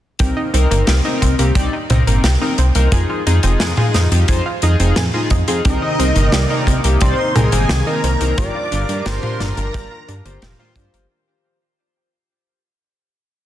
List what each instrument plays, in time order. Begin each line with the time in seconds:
0.19 analog synth bass C2, analog polysynth C4 D#4 A#4, synth arpeggio sound G4, kick, closed hi-hat
0.37 synth arpeggio sound D#4
0.54 analog synth bass C2, synth arpeggio sound C4, analog polysynth C4 D#4 A#4, closed hi-hat
0.71 analog synth bass G1, synth arpeggio sound A#3, analog polysynth C4 D#4 A#4, closed hi-hat
0.87 analog synth bass C2, synth arpeggio sound G4, snare, closed hi-hat
1.05 analog polysynth C4 D#4 A#4, synth arpeggio sound D#4
1.22 analog synth bass C2, synth arpeggio sound C4, kick, closed hi-hat
1.39 analog synth bass C2, synth arpeggio sound A#3, analog polysynth C4 D#4 G4, closed hi-hat
1.55 analog synth bass C2, analog polysynth C4 D#4 D5, synth arpeggio sound G4, kick, closed hi-hat
1.73 synth arpeggio sound D#4
1.90 analog synth bass C2, synth arpeggio sound C4, analog polysynth C4 D#4 A#4, closed hi-hat, mid tom
2.07 analog synth bass G1, synth arpeggio sound A#3, analog polysynth C4 D#4 A#4, closed hi-hat
2.24 analog synth bass C2, synth arpeggio sound G4, snare, closed hi-hat
2.41 analog polysynth C4 D#4 A#4, synth arpeggio sound D#4
2.58 analog synth bass C2, synth arpeggio sound C4, closed hi-hat
2.75 analog synth bass C2, synth arpeggio sound A#3, analog polysynth C4 D#4 A#4, closed hi-hat
2.92 analog synth bass F2, analog polysynth D#4 F4 G#4, synth arpeggio sound G#4, kick, closed hi-hat
3.10 synth arpeggio sound F4
3.27 analog synth bass F2, analog polysynth D#4 F4 G#4, synth arpeggio sound D#4, closed hi-hat
3.43 analog synth bass F1, synth arpeggio sound C4, analog polysynth D#4 F4 G#4, closed hi-hat
3.60 analog synth bass F2, synth arpeggio sound G#4, snare, closed hi-hat
3.77 analog polysynth D#4 F4 G#4, synth arpeggio sound F4, mid tom
3.94 analog synth bass F2, synth arpeggio sound D#4, snare, closed hi-hat
4.12 analog synth bass F2, synth arpeggio sound C4, analog polysynth D#4 F4 G4, closed hi-hat
4.28 analog synth bass F2, analog polysynth D#4 F4 C5, synth arpeggio sound G#4, kick, closed hi-hat
4.46 synth arpeggio sound F4
4.62 analog synth bass F2, analog polysynth D#4 F4 G#4, synth arpeggio sound D#4, closed hi-hat
4.80 analog synth bass F1, synth arpeggio sound C4, analog polysynth D#4 F4 G#4, closed hi-hat
4.96 analog synth bass F2, synth arpeggio sound G#4, snare, closed hi-hat, mid tom
5.14 analog polysynth D#4 F4 G#4, synth arpeggio sound F4
5.30 analog synth bass F2, synth arpeggio sound D#4, kick, closed hi-hat
5.48 analog synth bass F2, synth arpeggio sound C4, analog polysynth D#4 F4 G#4, closed hi-hat
5.65 analog synth bass C2, analog synth pad C3 D#3 A#3 D#4, analog polysynth C4 D#4 A#4, analog synth lead D#4, synth arpeggio sound G4, string machine D#5, kick, closed hi-hat
5.82 synth arpeggio sound D#4
5.99 analog synth bass C2, synth arpeggio sound C4, analog polysynth C4 D#4 A#4, closed hi-hat
6.16 analog synth bass G1, synth arpeggio sound A#3, analog polysynth C4 D#4 A#4, closed hi-hat
6.31 analog synth bass C2, analog synth lead D4, synth arpeggio sound G4, string machine D5, snare, closed hi-hat
6.50 analog polysynth C4 D#4 A#4, synth arpeggio sound D#4
6.67 analog synth bass C2, synth arpeggio sound C4, kick, closed hi-hat
6.84 analog synth bass C2, synth arpeggio sound A#3, analog polysynth C4 D#4 G4, closed hi-hat
7.01 analog synth bass C2, analog polysynth C4 D#4 D5, synth arpeggio sound G4, analog synth lead C5, string machine C6, kick, closed hi-hat
7.19 synth arpeggio sound D#4
7.36 analog synth bass C2, analog polysynth C4 D#4 A#4, synth arpeggio sound C4, analog synth lead G#4, string machine G#5, closed hi-hat, mid tom
7.52 analog synth bass G1, synth arpeggio sound A#3, analog polysynth C4 D#4 A#4, closed hi-hat
7.69 analog synth bass C2, synth arpeggio sound G4, snare, closed hi-hat
7.87 analog polysynth C4 D#4 A#4, synth arpeggio sound D#4, analog synth lead A#4, string machine A#5
8.03 analog synth bass C2, synth arpeggio sound C4, closed hi-hat
8.21 analog synth bass C2, synth arpeggio sound A#3, analog polysynth C4 D#4 A#4, closed hi-hat
8.38 analog synth bass G1, analog synth pad D4 F4 A#4, analog polysynth F4 G4 A#4, synth arpeggio sound G4, analog synth lead D5, string machine D6, kick, closed hi-hat
8.55 synth arpeggio sound F4
8.72 analog synth bass G1, synth arpeggio sound D4, analog polysynth F4 G4 A#4, closed hi-hat
8.89 analog synth bass G2, synth arpeggio sound A#3, analog polysynth F4 G4 A#4, closed hi-hat
9.06 analog synth bass G1, synth arpeggio sound G4, analog synth lead C5, string machine C6, snare, closed hi-hat
9.23 synth arpeggio sound F4, analog polysynth F4 G4 A#4, mid tom
9.40 analog synth bass G1, synth arpeggio sound D4, analog synth lead A#4, string machine A#5, snare, closed hi-hat
9.57 analog synth bass G1, synth arpeggio sound A#3, analog polysynth F4 G4 A#4, closed hi-hat
9.74 analog synth bass G1, analog polysynth F4 G4 D5, synth arpeggio sound G4, kick, closed hi-hat
9.91 synth arpeggio sound F4
10.08 analog synth bass G2, synth arpeggio sound D4, analog polysynth F4 G4 A#4, closed hi-hat
10.25 analog synth bass G1, synth arpeggio sound A#3, analog polysynth F4 G4 C5, closed hi-hat
10.42 analog synth bass F1, analog polysynth F4 G4 A#4, synth arpeggio sound G4, snare, closed hi-hat, mid tom
10.59 analog polysynth F4 G4 C5, synth arpeggio sound F4
10.76 analog synth bass G2, synth arpeggio sound D4, analog polysynth F4 G4 C5, kick, closed hi-hat
10.94 analog synth bass G1, synth arpeggio sound A#3, closed hi-hat